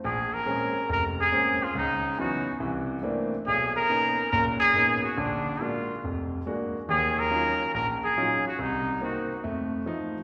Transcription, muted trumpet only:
X:1
M:4/4
L:1/8
Q:"Swing" 1/4=140
K:Bbm
V:1 name="Muted trumpet"
A B3 B A2 F | E2 G2 z4 | A ^A3 A _A2 ^F | =D2 F2 z4 |
A B3 B A2 G | E2 G2 z4 |]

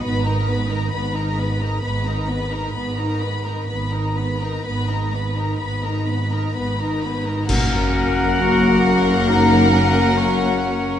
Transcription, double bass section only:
X:1
M:4/4
L:1/8
Q:1/4=66
K:G#dor
V:1 name="Double bass section" clef=bass
G,,,2 G,,,2 G,,,2 G,,,2 | G,,,2 G,,,2 G,,,2 G,,,2 | [K:F#] F,,,8 |]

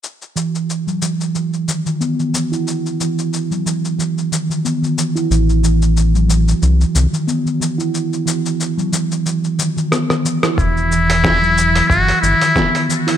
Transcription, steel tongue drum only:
X:1
M:4/4
L:1/16
Q:"Swing 16ths" 1/4=91
K:Em
V:1 name="Steel tongue drum" clef=bass
z2 E, z2 F, E, z E, z ^D, D, B, D, E, E | z2 E, z2 F, E, z E, z ^D, D, B, D, E, E | z2 E, z2 F, E, z E, z ^D, D, B, D, E, E | z2 E, z2 F, E, z E, z ^D, D, B, D, E, E |
z2 E, z2 F, E, z3 ^D, D, B, D, E, E |]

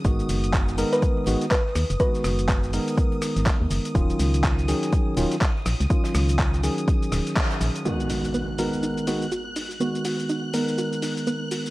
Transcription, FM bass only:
X:1
M:4/4
L:1/16
Q:"Swing 16ths" 1/4=123
K:G#dor
V:1 name="FM bass" clef=bass
G,,, z F,,,4 z4 G,,, z3 D,, F,,, | z2 F,,,4 z4 z G,,, z D,, F,,, z | D,,, z C,,4 z4 D,,, z3 A,,, C,, | z2 C,,4 z4 D,,, z3 A,,, z |
z16 | z16 |]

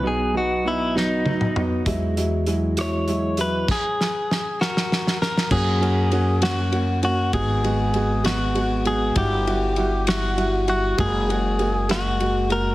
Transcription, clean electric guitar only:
X:1
M:6/8
L:1/8
Q:3/8=66
K:F#mix
V:1 name="Clean electric guitar"
G F E D2 z | z3 c2 B | G3 [FA]2 A | G3 F2 F |
G3 F2 G | =G3 F2 F | G3 F2 A |]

